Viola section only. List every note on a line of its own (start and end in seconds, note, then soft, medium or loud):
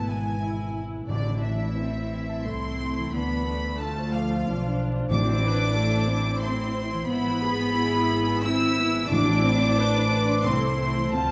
0.00 0.41 B3 medium
0.00 0.41 E4 medium
0.43 1.08 E4 medium
1.09 1.75 D4 medium
1.09 2.43 E4 medium
1.78 2.46 C4 medium
2.47 2.79 A3 medium
2.47 3.14 E4 medium
2.80 3.13 A3 medium
3.14 3.47 B3 medium
3.14 3.79 D4 medium
3.48 4.46 A3 medium
3.82 5.12 F4 medium
4.46 5.11 D4 medium
5.11 5.43 C4 medium
5.11 5.75 E4 medium
5.46 5.78 B4 medium
5.78 6.10 A3 medium
5.78 7.07 E4 medium
6.10 7.09 C4 medium
7.09 7.73 B3 medium
7.09 7.41 E4 medium
7.43 7.74 G#4 medium
7.75 8.43 E4 medium
7.75 8.43 G#4 medium
8.45 8.78 C4 medium
8.45 9.10 E4 medium
8.79 9.11 B3 medium
9.11 9.43 D4 medium
9.11 9.77 E4 medium
9.44 9.77 C4 loud
9.78 10.45 D4 medium
9.78 10.45 B4 medium
10.46 10.77 A3 medium
10.46 11.13 E4 medium
10.78 11.12 A3 medium
11.12 11.31 C4 medium
11.12 11.31 F4 medium